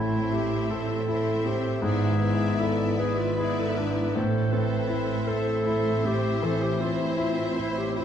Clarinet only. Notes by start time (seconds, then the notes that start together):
Already playing: E4
0.33 G4
0.71 A4
1.45 G4
1.82 G#4
2.60 A4
2.99 G#4
3.18 F4
3.38 G#4
3.59 A4
3.77 B4
4.14 C5
4.52 B4
5.27 A4
6.06 G4
6.43 A4
6.62 G4
6.80 F4
7.01 E4
7.20 F4
7.59 E4
7.77 G4
7.97 F4